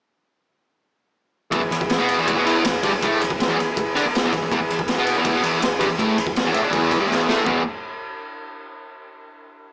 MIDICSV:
0, 0, Header, 1, 5, 480
1, 0, Start_track
1, 0, Key_signature, 4, "major"
1, 0, Tempo, 372671
1, 1953, Time_signature, 4, 2, 24, 8
1, 7232, Tempo, 366524
1, 12617, End_track
2, 0, Start_track
2, 0, Title_t, "Transistor combo organ"
2, 0, Program_c, 0, 18
2, 1936, Note_on_c, 0, 68, 79
2, 1945, Note_on_c, 0, 64, 81
2, 1967, Note_on_c, 0, 71, 95
2, 2370, Note_off_c, 0, 68, 0
2, 2375, Note_off_c, 0, 64, 0
2, 2385, Note_off_c, 0, 71, 0
2, 2392, Note_on_c, 0, 64, 86
2, 2400, Note_on_c, 0, 68, 82
2, 2402, Note_on_c, 0, 71, 100
2, 2838, Note_off_c, 0, 64, 0
2, 2842, Note_off_c, 0, 68, 0
2, 2844, Note_off_c, 0, 71, 0
2, 2896, Note_on_c, 0, 68, 74
2, 2909, Note_on_c, 0, 71, 97
2, 2913, Note_on_c, 0, 64, 83
2, 3331, Note_off_c, 0, 68, 0
2, 3338, Note_off_c, 0, 71, 0
2, 3339, Note_off_c, 0, 64, 0
2, 3380, Note_on_c, 0, 71, 92
2, 3388, Note_on_c, 0, 68, 77
2, 3389, Note_on_c, 0, 64, 81
2, 3813, Note_off_c, 0, 64, 0
2, 3814, Note_off_c, 0, 71, 0
2, 3818, Note_off_c, 0, 68, 0
2, 3828, Note_on_c, 0, 64, 89
2, 3837, Note_on_c, 0, 71, 98
2, 3838, Note_on_c, 0, 68, 82
2, 4278, Note_off_c, 0, 64, 0
2, 4283, Note_off_c, 0, 68, 0
2, 4283, Note_off_c, 0, 71, 0
2, 4348, Note_on_c, 0, 64, 88
2, 4366, Note_on_c, 0, 68, 74
2, 4383, Note_on_c, 0, 71, 94
2, 4773, Note_off_c, 0, 68, 0
2, 4778, Note_off_c, 0, 64, 0
2, 4788, Note_off_c, 0, 71, 0
2, 4788, Note_on_c, 0, 68, 79
2, 4802, Note_on_c, 0, 64, 94
2, 4803, Note_on_c, 0, 71, 90
2, 5239, Note_off_c, 0, 68, 0
2, 5245, Note_off_c, 0, 64, 0
2, 5246, Note_off_c, 0, 71, 0
2, 5320, Note_on_c, 0, 71, 96
2, 5325, Note_on_c, 0, 64, 85
2, 5339, Note_on_c, 0, 68, 76
2, 5737, Note_off_c, 0, 68, 0
2, 5744, Note_off_c, 0, 71, 0
2, 5747, Note_off_c, 0, 64, 0
2, 5753, Note_on_c, 0, 68, 79
2, 5766, Note_on_c, 0, 71, 102
2, 5768, Note_on_c, 0, 64, 94
2, 6200, Note_off_c, 0, 68, 0
2, 6206, Note_off_c, 0, 71, 0
2, 6207, Note_off_c, 0, 64, 0
2, 6266, Note_on_c, 0, 68, 78
2, 6271, Note_on_c, 0, 71, 94
2, 6277, Note_on_c, 0, 64, 85
2, 6695, Note_off_c, 0, 68, 0
2, 6697, Note_off_c, 0, 71, 0
2, 6700, Note_off_c, 0, 64, 0
2, 6765, Note_on_c, 0, 64, 82
2, 6786, Note_on_c, 0, 71, 97
2, 6794, Note_on_c, 0, 68, 80
2, 7182, Note_off_c, 0, 64, 0
2, 7193, Note_off_c, 0, 71, 0
2, 7197, Note_off_c, 0, 68, 0
2, 7262, Note_on_c, 0, 68, 76
2, 7267, Note_on_c, 0, 64, 86
2, 7277, Note_on_c, 0, 71, 97
2, 7675, Note_off_c, 0, 68, 0
2, 7678, Note_off_c, 0, 64, 0
2, 7683, Note_off_c, 0, 71, 0
2, 7734, Note_on_c, 0, 71, 97
2, 7758, Note_on_c, 0, 64, 85
2, 7767, Note_on_c, 0, 68, 82
2, 8152, Note_off_c, 0, 71, 0
2, 8164, Note_off_c, 0, 64, 0
2, 8169, Note_off_c, 0, 68, 0
2, 8220, Note_on_c, 0, 64, 86
2, 8223, Note_on_c, 0, 68, 76
2, 8231, Note_on_c, 0, 73, 90
2, 8635, Note_off_c, 0, 64, 0
2, 8637, Note_off_c, 0, 68, 0
2, 8641, Note_off_c, 0, 73, 0
2, 8680, Note_on_c, 0, 68, 82
2, 8687, Note_on_c, 0, 64, 82
2, 8696, Note_on_c, 0, 71, 96
2, 9106, Note_off_c, 0, 68, 0
2, 9109, Note_off_c, 0, 64, 0
2, 9114, Note_off_c, 0, 71, 0
2, 9179, Note_on_c, 0, 64, 84
2, 9182, Note_on_c, 0, 71, 92
2, 9191, Note_on_c, 0, 68, 74
2, 9594, Note_off_c, 0, 64, 0
2, 9596, Note_off_c, 0, 71, 0
2, 9601, Note_off_c, 0, 68, 0
2, 9652, Note_on_c, 0, 64, 82
2, 9652, Note_on_c, 0, 68, 80
2, 9652, Note_on_c, 0, 71, 90
2, 9869, Note_off_c, 0, 64, 0
2, 9869, Note_off_c, 0, 68, 0
2, 9869, Note_off_c, 0, 71, 0
2, 12617, End_track
3, 0, Start_track
3, 0, Title_t, "Distorted electric guitar"
3, 0, Program_c, 1, 30
3, 1945, Note_on_c, 1, 40, 96
3, 1958, Note_on_c, 1, 52, 107
3, 2056, Note_off_c, 1, 40, 0
3, 2068, Note_off_c, 1, 52, 0
3, 2072, Note_on_c, 1, 40, 77
3, 2192, Note_off_c, 1, 40, 0
3, 2205, Note_on_c, 1, 40, 74
3, 2391, Note_off_c, 1, 40, 0
3, 2441, Note_on_c, 1, 40, 82
3, 2552, Note_on_c, 1, 47, 95
3, 2557, Note_off_c, 1, 40, 0
3, 2570, Note_on_c, 1, 59, 97
3, 2785, Note_off_c, 1, 47, 0
3, 2794, Note_off_c, 1, 59, 0
3, 2808, Note_on_c, 1, 40, 88
3, 2822, Note_on_c, 1, 52, 103
3, 3034, Note_off_c, 1, 40, 0
3, 3041, Note_off_c, 1, 52, 0
3, 3048, Note_on_c, 1, 47, 84
3, 3059, Note_on_c, 1, 59, 109
3, 3154, Note_off_c, 1, 47, 0
3, 3155, Note_on_c, 1, 40, 94
3, 3159, Note_off_c, 1, 59, 0
3, 3167, Note_on_c, 1, 52, 109
3, 3388, Note_off_c, 1, 40, 0
3, 3394, Note_off_c, 1, 52, 0
3, 3405, Note_on_c, 1, 40, 70
3, 3592, Note_off_c, 1, 40, 0
3, 3644, Note_on_c, 1, 43, 87
3, 3656, Note_on_c, 1, 55, 100
3, 3753, Note_off_c, 1, 43, 0
3, 3759, Note_off_c, 1, 55, 0
3, 3775, Note_on_c, 1, 40, 71
3, 3885, Note_off_c, 1, 40, 0
3, 3890, Note_on_c, 1, 45, 91
3, 3900, Note_on_c, 1, 57, 117
3, 4116, Note_off_c, 1, 45, 0
3, 4121, Note_off_c, 1, 57, 0
3, 4133, Note_on_c, 1, 40, 73
3, 4317, Note_off_c, 1, 40, 0
3, 4477, Note_on_c, 1, 40, 99
3, 4499, Note_on_c, 1, 52, 104
3, 4590, Note_off_c, 1, 40, 0
3, 4601, Note_off_c, 1, 52, 0
3, 4613, Note_on_c, 1, 40, 72
3, 4798, Note_off_c, 1, 40, 0
3, 5086, Note_on_c, 1, 50, 85
3, 5102, Note_on_c, 1, 62, 106
3, 5195, Note_off_c, 1, 50, 0
3, 5203, Note_off_c, 1, 62, 0
3, 5211, Note_on_c, 1, 40, 65
3, 5397, Note_off_c, 1, 40, 0
3, 5458, Note_on_c, 1, 40, 92
3, 5473, Note_on_c, 1, 52, 97
3, 5561, Note_off_c, 1, 40, 0
3, 5568, Note_off_c, 1, 52, 0
3, 5579, Note_on_c, 1, 40, 77
3, 5685, Note_off_c, 1, 40, 0
3, 5701, Note_on_c, 1, 40, 75
3, 5796, Note_off_c, 1, 40, 0
3, 5812, Note_on_c, 1, 40, 104
3, 5819, Note_on_c, 1, 52, 101
3, 5917, Note_off_c, 1, 40, 0
3, 5921, Note_off_c, 1, 52, 0
3, 5936, Note_on_c, 1, 40, 82
3, 6047, Note_off_c, 1, 40, 0
3, 6067, Note_on_c, 1, 40, 78
3, 6243, Note_off_c, 1, 40, 0
3, 6306, Note_on_c, 1, 40, 85
3, 6407, Note_on_c, 1, 47, 95
3, 6411, Note_off_c, 1, 40, 0
3, 6420, Note_on_c, 1, 59, 106
3, 6633, Note_off_c, 1, 47, 0
3, 6640, Note_off_c, 1, 59, 0
3, 6645, Note_on_c, 1, 40, 91
3, 6654, Note_on_c, 1, 52, 105
3, 6871, Note_off_c, 1, 40, 0
3, 6876, Note_off_c, 1, 52, 0
3, 6876, Note_on_c, 1, 47, 111
3, 6888, Note_on_c, 1, 59, 107
3, 6987, Note_off_c, 1, 47, 0
3, 6988, Note_on_c, 1, 40, 88
3, 6993, Note_off_c, 1, 59, 0
3, 7003, Note_on_c, 1, 52, 109
3, 7221, Note_off_c, 1, 40, 0
3, 7229, Note_off_c, 1, 52, 0
3, 7235, Note_on_c, 1, 40, 80
3, 7427, Note_off_c, 1, 40, 0
3, 7454, Note_on_c, 1, 43, 97
3, 7472, Note_on_c, 1, 55, 102
3, 7577, Note_off_c, 1, 43, 0
3, 7586, Note_off_c, 1, 55, 0
3, 7586, Note_on_c, 1, 40, 79
3, 7711, Note_off_c, 1, 40, 0
3, 7713, Note_on_c, 1, 45, 98
3, 7737, Note_on_c, 1, 57, 120
3, 7948, Note_off_c, 1, 45, 0
3, 7960, Note_off_c, 1, 57, 0
3, 7969, Note_on_c, 1, 40, 85
3, 8155, Note_off_c, 1, 40, 0
3, 8317, Note_on_c, 1, 40, 99
3, 8344, Note_on_c, 1, 52, 111
3, 8426, Note_on_c, 1, 45, 90
3, 8431, Note_off_c, 1, 40, 0
3, 8439, Note_on_c, 1, 57, 85
3, 8444, Note_off_c, 1, 52, 0
3, 8545, Note_off_c, 1, 45, 0
3, 8552, Note_off_c, 1, 57, 0
3, 8557, Note_on_c, 1, 50, 88
3, 8578, Note_on_c, 1, 62, 110
3, 8648, Note_on_c, 1, 40, 91
3, 8661, Note_on_c, 1, 52, 94
3, 8671, Note_off_c, 1, 50, 0
3, 8681, Note_off_c, 1, 62, 0
3, 9017, Note_off_c, 1, 40, 0
3, 9023, Note_off_c, 1, 52, 0
3, 9030, Note_on_c, 1, 43, 73
3, 9040, Note_on_c, 1, 55, 98
3, 9131, Note_off_c, 1, 43, 0
3, 9136, Note_on_c, 1, 40, 88
3, 9145, Note_off_c, 1, 55, 0
3, 9151, Note_on_c, 1, 52, 96
3, 9380, Note_off_c, 1, 40, 0
3, 9388, Note_off_c, 1, 52, 0
3, 9403, Note_on_c, 1, 45, 86
3, 9417, Note_on_c, 1, 57, 110
3, 9634, Note_off_c, 1, 45, 0
3, 9640, Note_on_c, 1, 40, 90
3, 9641, Note_off_c, 1, 57, 0
3, 9643, Note_on_c, 1, 47, 101
3, 9666, Note_on_c, 1, 52, 123
3, 9831, Note_off_c, 1, 40, 0
3, 9833, Note_off_c, 1, 47, 0
3, 9845, Note_off_c, 1, 52, 0
3, 12617, End_track
4, 0, Start_track
4, 0, Title_t, "Muted distorted electric guitar strokes"
4, 4368, Note_on_c, 9, 29, 61
4, 4497, Note_off_c, 9, 29, 0
4, 8225, Note_on_c, 9, 29, 69
4, 8356, Note_off_c, 9, 29, 0
4, 12617, End_track
5, 0, Start_track
5, 0, Title_t, "Drums"
5, 1956, Note_on_c, 9, 51, 106
5, 1966, Note_on_c, 9, 36, 118
5, 2085, Note_off_c, 9, 51, 0
5, 2095, Note_off_c, 9, 36, 0
5, 2214, Note_on_c, 9, 51, 74
5, 2333, Note_on_c, 9, 36, 94
5, 2343, Note_off_c, 9, 51, 0
5, 2441, Note_on_c, 9, 51, 103
5, 2456, Note_on_c, 9, 38, 113
5, 2462, Note_off_c, 9, 36, 0
5, 2569, Note_off_c, 9, 51, 0
5, 2585, Note_off_c, 9, 38, 0
5, 2687, Note_on_c, 9, 51, 73
5, 2815, Note_off_c, 9, 51, 0
5, 2933, Note_on_c, 9, 36, 119
5, 2933, Note_on_c, 9, 51, 116
5, 3062, Note_off_c, 9, 36, 0
5, 3062, Note_off_c, 9, 51, 0
5, 3176, Note_on_c, 9, 51, 78
5, 3305, Note_off_c, 9, 51, 0
5, 3407, Note_on_c, 9, 51, 119
5, 3422, Note_on_c, 9, 38, 117
5, 3535, Note_off_c, 9, 51, 0
5, 3551, Note_off_c, 9, 38, 0
5, 3647, Note_on_c, 9, 51, 86
5, 3651, Note_on_c, 9, 36, 92
5, 3776, Note_off_c, 9, 51, 0
5, 3780, Note_off_c, 9, 36, 0
5, 3896, Note_on_c, 9, 51, 108
5, 3897, Note_on_c, 9, 36, 115
5, 4025, Note_off_c, 9, 36, 0
5, 4025, Note_off_c, 9, 51, 0
5, 4139, Note_on_c, 9, 51, 74
5, 4256, Note_on_c, 9, 36, 93
5, 4268, Note_off_c, 9, 51, 0
5, 4380, Note_on_c, 9, 51, 100
5, 4385, Note_off_c, 9, 36, 0
5, 4396, Note_on_c, 9, 38, 116
5, 4509, Note_off_c, 9, 51, 0
5, 4524, Note_off_c, 9, 38, 0
5, 4637, Note_on_c, 9, 51, 76
5, 4766, Note_off_c, 9, 51, 0
5, 4856, Note_on_c, 9, 36, 119
5, 4860, Note_on_c, 9, 51, 98
5, 4985, Note_off_c, 9, 36, 0
5, 4989, Note_off_c, 9, 51, 0
5, 5105, Note_on_c, 9, 51, 76
5, 5234, Note_off_c, 9, 51, 0
5, 5346, Note_on_c, 9, 51, 92
5, 5361, Note_on_c, 9, 38, 124
5, 5474, Note_off_c, 9, 51, 0
5, 5490, Note_off_c, 9, 38, 0
5, 5575, Note_on_c, 9, 36, 100
5, 5584, Note_on_c, 9, 51, 78
5, 5703, Note_off_c, 9, 36, 0
5, 5713, Note_off_c, 9, 51, 0
5, 5816, Note_on_c, 9, 36, 120
5, 5823, Note_on_c, 9, 51, 108
5, 5945, Note_off_c, 9, 36, 0
5, 5952, Note_off_c, 9, 51, 0
5, 6058, Note_on_c, 9, 51, 72
5, 6171, Note_on_c, 9, 36, 92
5, 6187, Note_off_c, 9, 51, 0
5, 6281, Note_on_c, 9, 51, 101
5, 6297, Note_on_c, 9, 38, 110
5, 6299, Note_off_c, 9, 36, 0
5, 6410, Note_off_c, 9, 51, 0
5, 6426, Note_off_c, 9, 38, 0
5, 6524, Note_on_c, 9, 51, 83
5, 6652, Note_off_c, 9, 51, 0
5, 6756, Note_on_c, 9, 51, 108
5, 6762, Note_on_c, 9, 36, 117
5, 6884, Note_off_c, 9, 51, 0
5, 6891, Note_off_c, 9, 36, 0
5, 6998, Note_on_c, 9, 51, 79
5, 7127, Note_off_c, 9, 51, 0
5, 7239, Note_on_c, 9, 51, 102
5, 7255, Note_on_c, 9, 38, 119
5, 7370, Note_off_c, 9, 51, 0
5, 7386, Note_off_c, 9, 38, 0
5, 7481, Note_on_c, 9, 51, 87
5, 7485, Note_on_c, 9, 36, 91
5, 7612, Note_off_c, 9, 51, 0
5, 7616, Note_off_c, 9, 36, 0
5, 7726, Note_on_c, 9, 51, 100
5, 7728, Note_on_c, 9, 36, 114
5, 7857, Note_off_c, 9, 51, 0
5, 7859, Note_off_c, 9, 36, 0
5, 7970, Note_on_c, 9, 51, 75
5, 8086, Note_on_c, 9, 36, 91
5, 8101, Note_off_c, 9, 51, 0
5, 8209, Note_on_c, 9, 51, 105
5, 8217, Note_off_c, 9, 36, 0
5, 8225, Note_on_c, 9, 38, 114
5, 8340, Note_off_c, 9, 51, 0
5, 8356, Note_off_c, 9, 38, 0
5, 8447, Note_on_c, 9, 51, 81
5, 8577, Note_off_c, 9, 51, 0
5, 8687, Note_on_c, 9, 51, 106
5, 8692, Note_on_c, 9, 36, 116
5, 8818, Note_off_c, 9, 51, 0
5, 8823, Note_off_c, 9, 36, 0
5, 8934, Note_on_c, 9, 36, 86
5, 8939, Note_on_c, 9, 51, 74
5, 9065, Note_off_c, 9, 36, 0
5, 9070, Note_off_c, 9, 51, 0
5, 9191, Note_on_c, 9, 38, 66
5, 9322, Note_off_c, 9, 38, 0
5, 9423, Note_on_c, 9, 38, 105
5, 9554, Note_off_c, 9, 38, 0
5, 9654, Note_on_c, 9, 43, 106
5, 9655, Note_on_c, 9, 36, 103
5, 9785, Note_off_c, 9, 43, 0
5, 9786, Note_off_c, 9, 36, 0
5, 12617, End_track
0, 0, End_of_file